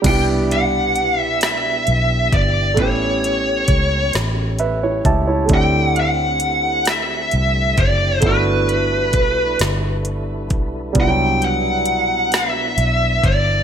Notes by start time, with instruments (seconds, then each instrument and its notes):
0.02 fingered electric bass C2, grand piano G3 B3, tonewheel organ B3, kick, closed hi-hat, crash
0.06 tonewheel organ B2 D4 E4 G4, grand piano D4 E4 G4, lead electric guitar G5
0.51 lead electric guitar F#5, closed hi-hat
0.96 closed hi-hat
1.18 lead electric guitar E5
1.41 lead electric guitar E5, snare, closed hi-hat
1.87 fingered electric bass B1, closed hi-hat
2.33 fingered electric bass G1, lead electric guitar D5, kick, closed hi-hat
2.74 fingered electric bass A1, grand piano A3 B3, tonewheel organ A3 C#4 G4, kick, closed hi-hat
2.78 grand piano C#4 E4 G4, lead electric guitar C#5
3.24 closed hi-hat
3.68 fingered electric bass C#2, kick, closed hi-hat
4.13 fingered electric bass A1, snare, closed hi-hat
4.59 grand piano B4 E5, closed hi-hat
4.83 grand piano E4 C#5
5.05 fingered electric bass C#2, grand piano G4 E5 A5, kick, closed hi-hat
5.27 grand piano E4 C#5
5.45 grand piano A3 C4
5.49 fingered electric bass D2, tonewheel organ D3 C4 E4, grand piano D4 E4, kick, closed hi-hat
5.53 grand piano G4, lead electric guitar G5
5.84 lead electric guitar F#5
5.96 lead electric guitar F#5, closed hi-hat
6.40 closed hi-hat
6.85 lead electric guitar E5, snare, closed hi-hat
7.31 fingered electric bass C2, closed hi-hat
7.78 fingered electric bass F#1, lead electric guitar D5, kick, closed hi-hat
8.20 fingered electric bass G1, tonewheel organ G3 D4 A4 B4, grand piano A3 B3, kick, closed hi-hat
8.24 grand piano D4 E4, lead electric guitar B4
8.28 grand piano F#4
8.69 closed hi-hat
9.13 fingered electric bass B1, kick, closed hi-hat
9.59 fingered electric bass G1, snare, closed hi-hat
10.05 closed hi-hat
10.50 fingered electric bass B1, kick, closed hi-hat
10.93 fingered electric bass C2, tonewheel organ B2 B3, grand piano G3 B3 D4, kick, closed hi-hat
10.99 grand piano E4 F4, lead electric guitar G5
11.07 grand piano F#3
11.42 lead electric guitar F#5, closed hi-hat
11.86 closed hi-hat
12.32 lead electric guitar E5, snare, closed hi-hat
12.78 fingered electric bass B1, closed hi-hat
13.24 fingered electric bass G1, lead electric guitar D5, kick, closed hi-hat